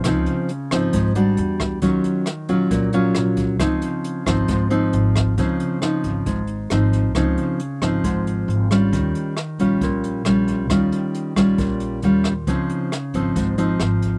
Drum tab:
HH |xxxxxxxx|xxxxxxxx|xxxxxxxx|xxxxxxxx|
SD |r--r---r|--r---r-|r--r---r|--r---r-|
BD |o---o--o|o---o--o|o--oo--o|o--oo--o|

HH |xxxxxxxx|xxxxxxxx|xxxxxxxx|xxxxxxxx|
SD |r--r---r|--r---r-|r--r---r|--r---r-|
BD |o--oo--o|o--oo--o|o--oo--o|o--oo--o|